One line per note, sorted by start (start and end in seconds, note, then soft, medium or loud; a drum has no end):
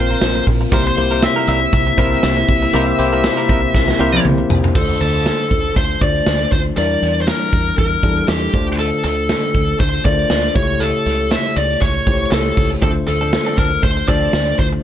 0.00 0.15 A#1 loud
0.00 0.74 A#2 medium
0.00 0.68 C3 medium
0.00 0.10 A#3 medium
0.00 4.71 A#3 medium
0.00 0.10 C4 medium
0.00 0.72 C4 medium
0.00 0.68 F4 medium
0.00 0.74 F4 medium
0.00 0.74 A#4 medium
0.00 0.44 C5 medium
0.00 0.43 C6 medium
0.10 0.20 A#3 medium
0.10 0.20 C4 medium
0.10 0.20 F4 medium
0.10 0.20 A#4 medium
0.21 0.40 A#1 loud
0.21 snare loud
0.21 closed hi-hat medium
0.21 tambourine medium
0.36 muted clean electric guitar stroke soft
0.47 0.65 A#1 loud
0.47 kick medium
0.47 open hi-hat medium
0.61 muted clean electric guitar stroke medium
0.71 0.90 C2 loud
0.71 1.44 C3 medium
0.71 4.72 C3 medium
0.71 0.87 G3 loud
0.71 0.93 A#3 medium
0.71 0.93 C4 medium
0.71 0.86 C4 medium
0.71 0.93 E4 medium
0.71 4.72 E4 medium
0.71 0.85 E4 loud
0.71 0.93 G4 medium
0.71 0.85 A#4 loud
0.71 0.93 C5 medium
0.71 0.86 C5 loud
0.71 0.86 C6 medium
0.71 kick loud
0.71 closed hi-hat medium
0.86 1.24 C5 medium
0.86 1.21 C6 medium
0.86 muted clean electric guitar stroke soft
0.97 1.26 C2 loud
0.97 1.79 A#3 medium
0.97 1.79 C4 medium
0.97 1.80 E4 medium
0.97 1.80 G4 medium
0.97 1.80 C5 medium
0.97 muted clean electric guitar stroke soft
0.97 closed hi-hat medium
1.11 1.21 G3 soft
1.11 1.21 C4 soft
1.11 1.21 E4 medium
1.11 1.20 A#4 medium
1.22 1.47 E5 loud
1.22 1.46 E6 loud
1.22 muted clean electric guitar stroke soft
1.22 snare loud
1.22 closed hi-hat medium
1.22 tambourine medium
1.36 1.46 G3 medium
1.36 1.47 C4 medium
1.36 1.47 E4 medium
1.36 1.48 A#4 medium
1.47 1.66 C2 medium
1.47 1.59 G3 medium
1.47 1.59 C4 medium
1.47 1.60 E4 medium
1.47 1.60 A#4 medium
1.47 4.22 E5 loud
1.47 4.21 E6 medium
1.47 closed hi-hat medium
1.61 muted clean electric guitar stroke soft
1.73 1.91 C2 loud
1.73 muted clean electric guitar stroke soft
1.73 kick medium
1.73 closed hi-hat medium
1.87 muted clean electric guitar stroke soft
1.97 2.16 C2 loud
1.97 2.12 G3 medium
1.97 2.60 A#3 medium
1.97 2.60 C4 medium
1.97 2.11 C4 medium
1.97 2.60 E4 medium
1.97 2.11 E4 loud
1.97 2.60 G4 medium
1.97 2.11 A#4 medium
1.97 2.61 C5 medium
1.97 kick medium
1.97 closed hi-hat medium
2.12 2.22 G3 medium
2.12 2.22 C4 medium
2.12 2.22 E4 medium
2.12 2.21 A#4 medium
2.23 2.42 C2 loud
2.23 snare loud
2.23 closed hi-hat medium
2.23 tambourine medium
2.37 muted clean electric guitar stroke medium
2.49 2.67 C2 loud
2.49 kick medium
2.49 open hi-hat medium
2.62 muted clean electric guitar stroke medium
2.73 2.92 C2 loud
2.73 3.45 C3 medium
2.73 2.88 G3 medium
2.73 2.94 A#3 medium
2.73 2.95 C4 medium
2.73 2.87 C4 medium
2.73 2.95 E4 medium
2.73 2.87 E4 medium
2.73 2.95 G4 medium
2.73 2.86 A#4 loud
2.73 2.95 C5 loud
2.73 closed hi-hat medium
2.88 muted clean electric guitar stroke soft
2.98 3.27 C2 loud
2.98 3.81 A#3 medium
2.98 3.81 C4 medium
2.98 3.81 E4 medium
2.98 3.81 G4 medium
2.98 3.81 C5 loud
2.98 muted clean electric guitar stroke soft
2.98 closed hi-hat medium
3.13 3.23 G3 medium
3.13 3.23 C4 medium
3.13 3.22 E4 medium
3.13 3.22 A#4 medium
3.24 snare loud
3.24 closed hi-hat medium
3.24 tambourine medium
3.37 3.48 G3 medium
3.37 3.48 C4 medium
3.37 3.48 E4 medium
3.37 3.49 A#4 medium
3.49 3.68 C2 medium
3.49 3.61 G3 medium
3.49 3.61 C4 medium
3.49 3.61 E4 medium
3.49 3.61 A#4 medium
3.49 kick medium
3.49 closed hi-hat medium
3.74 3.93 C2 medium
3.74 muted clean electric guitar stroke soft
3.74 kick medium
3.74 snare medium
3.88 muted clean electric guitar stroke medium
3.88 snare medium
3.99 4.18 C2 loud
3.99 4.13 G3 medium
3.99 4.62 A#3 medium
3.99 4.62 C4 medium
3.99 4.13 C4 medium
3.99 4.62 E4 medium
3.99 4.12 E4 medium
3.99 4.62 G4 medium
3.99 4.12 A#4 loud
3.99 4.62 C5 loud
4.13 4.23 G3 soft
4.13 4.23 C4 medium
4.13 4.23 E4 medium
4.13 4.23 A#4 medium
4.13 high tom medium
4.25 4.43 C2 loud
4.25 mid tom loud
4.38 muted clean electric guitar stroke soft
4.50 4.69 C2 loud
4.50 floor tom loud
4.64 muted clean electric guitar stroke soft
4.64 floor tom loud
4.75 4.94 D2 medium
4.75 5.47 D3 medium
4.75 5.57 A3 medium
4.75 5.58 D4 medium
4.75 5.58 F4 medium
4.75 5.00 A4 medium
4.75 5.58 C5 medium
4.75 kick loud
4.75 crash medium
5.01 5.29 D2 medium
5.01 5.72 A4 medium
5.01 closed hi-hat medium
5.26 snare loud
5.26 closed hi-hat medium
5.40 closed hi-hat soft
5.51 5.69 D2 medium
5.51 kick medium
5.51 closed hi-hat medium
5.76 5.95 D2 medium
5.76 6.02 C5 medium
5.76 kick medium
5.76 closed hi-hat medium
6.01 6.20 D2 medium
6.01 6.64 A3 medium
6.01 6.64 D4 medium
6.01 6.64 F4 medium
6.01 6.64 C5 medium
6.01 6.52 D5 loud
6.01 kick medium
6.01 closed hi-hat medium
6.27 6.45 D2 loud
6.27 snare loud
6.27 closed hi-hat medium
6.52 6.70 D2 medium
6.52 6.59 C5 medium
6.52 kick medium
6.52 closed hi-hat medium
6.77 6.95 E2 loud
6.77 7.49 E3 medium
6.77 7.59 G3 medium
6.77 7.59 D4 medium
6.77 7.59 E4 medium
6.77 7.60 A#4 medium
6.77 7.18 D5 loud
6.77 closed hi-hat medium
7.02 7.31 E2 medium
7.02 closed hi-hat medium
7.21 7.28 C5 medium
7.27 7.74 A#4 medium
7.27 snare loud
7.27 closed hi-hat medium
7.53 7.71 E2 medium
7.53 kick medium
7.53 closed hi-hat medium
7.78 7.96 E2 medium
7.78 8.25 A#4 medium
7.78 kick medium
7.78 closed hi-hat medium
8.03 8.21 E2 medium
8.03 8.53 G3 medium
8.03 8.52 D4 medium
8.03 8.54 E4 medium
8.03 8.54 A4 medium
8.03 kick medium
8.03 closed hi-hat medium
8.28 8.47 E2 loud
8.28 8.65 G4 medium
8.28 snare loud
8.28 closed hi-hat medium
8.53 8.90 D2 loud
8.53 9.25 D3 medium
8.53 9.36 A3 medium
8.53 9.36 D4 medium
8.53 9.36 F4 medium
8.53 9.36 C5 medium
8.53 kick loud
8.53 closed hi-hat medium
8.79 9.03 A4 loud
8.79 closed hi-hat medium
9.04 9.32 D2 medium
9.04 9.76 A4 medium
9.04 closed hi-hat medium
9.29 snare loud
9.29 closed hi-hat medium
9.54 9.73 D2 medium
9.54 kick medium
9.54 closed hi-hat medium
9.80 9.98 D2 medium
9.80 10.05 C5 medium
9.80 kick medium
9.80 closed hi-hat medium
9.94 closed hi-hat medium
10.05 10.23 D2 medium
10.05 10.54 A3 medium
10.05 10.55 D4 medium
10.05 10.56 F4 medium
10.05 10.12 A#4 medium
10.05 10.52 D5 loud
10.05 kick medium
10.05 closed hi-hat medium
10.12 10.59 C5 medium
10.30 10.49 D2 loud
10.30 snare loud
10.30 closed hi-hat medium
10.55 10.92 C#2 loud
10.55 11.27 C#3 medium
10.55 11.37 A3 medium
10.55 11.38 E4 medium
10.55 11.38 G4 medium
10.55 10.81 C#5 loud
10.55 11.38 C#5 medium
10.55 kick loud
10.55 closed hi-hat medium
10.80 11.32 A4 medium
10.80 closed hi-hat medium
11.06 11.34 C#2 medium
11.06 closed hi-hat medium
11.31 11.57 E5 loud
11.31 snare loud
11.31 closed hi-hat medium
11.56 11.75 C#2 medium
11.56 11.81 D5 loud
11.56 closed hi-hat medium
11.81 12.00 C#2 medium
11.81 12.28 C#5 loud
11.81 kick medium
11.81 closed hi-hat medium
12.06 12.25 C#2 medium
12.06 12.69 A3 medium
12.06 12.69 E4 medium
12.06 12.69 G4 medium
12.06 12.14 C5 medium
12.06 kick medium
12.06 closed hi-hat medium
12.14 12.72 C#5 medium
12.32 12.50 C#2 medium
12.32 12.68 A4 medium
12.32 snare loud
12.32 closed hi-hat medium
12.57 12.75 C#2 loud
12.57 kick medium
12.57 open hi-hat medium
12.82 13.01 D2 loud
12.82 13.54 D3 medium
12.82 12.97 F3 medium
12.82 13.64 A3 medium
12.82 12.96 C4 medium
12.82 13.64 D4 medium
12.82 12.95 D4 medium
12.82 13.65 F4 medium
12.82 12.89 A4 medium
12.82 12.95 A4 medium
12.82 13.65 C5 medium
12.82 kick loud
12.82 closed hi-hat medium
12.96 muted clean electric guitar stroke soft
13.07 13.36 D2 medium
13.07 13.57 A4 medium
13.07 muted clean electric guitar stroke soft
13.07 closed hi-hat medium
13.21 13.31 F3 soft
13.21 13.31 C4 soft
13.21 13.31 D4 medium
13.21 13.31 A4 medium
13.33 snare loud
13.33 closed hi-hat medium
13.46 13.56 F3 medium
13.46 13.57 C4 medium
13.46 13.57 D4 medium
13.46 13.58 A4 medium
13.46 closed hi-hat soft
13.57 13.76 D2 medium
13.57 13.69 F3 medium
13.57 13.69 C4 medium
13.57 13.70 D4 medium
13.57 13.70 A4 medium
13.57 13.81 A#4 medium
13.57 kick medium
13.57 closed hi-hat medium
13.72 muted clean electric guitar stroke soft
13.83 14.01 D2 loud
13.83 14.08 C5 loud
13.83 muted clean electric guitar stroke soft
13.83 kick medium
13.83 closed hi-hat medium
13.97 muted clean electric guitar stroke soft
14.08 14.27 D2 loud
14.08 14.22 F3 medium
14.08 14.70 A3 medium
14.08 14.22 C4 medium
14.08 14.70 D4 medium
14.08 14.21 D4 medium
14.08 14.71 F4 medium
14.08 14.21 A4 medium
14.08 14.71 C5 medium
14.08 14.59 D5 loud
14.08 kick medium
14.08 closed hi-hat medium
14.22 14.32 F3 soft
14.22 14.32 C4 soft
14.22 14.32 D4 medium
14.22 14.31 A4 medium
14.33 14.52 D2 loud
14.33 snare loud
14.33 closed hi-hat medium
14.47 muted clean electric guitar stroke soft
14.59 14.77 D2 medium
14.59 14.66 C5 medium
14.59 kick medium
14.59 closed hi-hat medium
14.72 muted clean electric guitar stroke soft